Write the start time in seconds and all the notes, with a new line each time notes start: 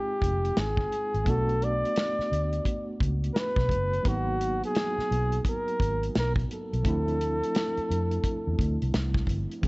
Already playing: G#3 C4 D#4 F4 G4 G5
0.22 F1, kick, closed hi-hat
0.45 closed hi-hat
0.57 G#1 G#4, snare, closed hi-hat
0.77 kick, snare
0.92 closed hi-hat
1.14 G#1, closed hi-hat
1.24 B1 A3 B3, kick, closed hi-hat
1.28 D4 F#4 A4
1.49 closed hi-hat
1.62 D5, closed hi-hat
1.85 closed hi-hat
1.96 snare, closed hi-hat
2.19 muted fingered electric bass stroke, snare
2.32 D2, closed hi-hat
2.53 closed hi-hat
2.65 kick, closed hi-hat
3.01 C#2, kick, closed hi-hat
3.24 closed hi-hat
3.34 A#4, snare, closed hi-hat
3.39 B4
3.56 B1, kick, snare
3.69 F#1, kick, closed hi-hat
3.94 closed hi-hat
4.03 G#1 F#3 A#3 B3 D#4, kick, closed hi-hat
4.08 F#4
4.41 closed hi-hat
4.64 G#4, closed hi-hat
4.75 snare, closed hi-hat
4.98 muted fingered electric bass stroke, snare
5.11 B1, closed hi-hat
5.32 closed hi-hat
5.45 kick, closed hi-hat
5.49 A#4
5.68 closed hi-hat
5.80 G#1, kick, closed hi-hat
6.03 closed hi-hat
6.15 B1 A#4, snare, closed hi-hat
6.36 kick, closed hi-hat
6.51 A4, closed hi-hat
6.73 B1, closed hi-hat
6.83 D2 F3 A3 C4 D4, kick, closed hi-hat
6.88 E4
7.08 closed hi-hat
7.21 closed hi-hat
7.43 closed hi-hat
7.55 snare, closed hi-hat
7.77 muted fingered electric bass stroke, closed hi-hat
7.90 F2, closed hi-hat
8.11 closed hi-hat
8.24 kick, closed hi-hat
8.47 E2
8.59 D2, kick, closed hi-hat
8.82 C2, closed hi-hat
8.94 C2, snare, closed hi-hat
9.15 kick, snare
9.27 G1, kick, closed hi-hat
9.52 closed hi-hat
9.62 A1 E3 A3 C4, kick, closed hi-hat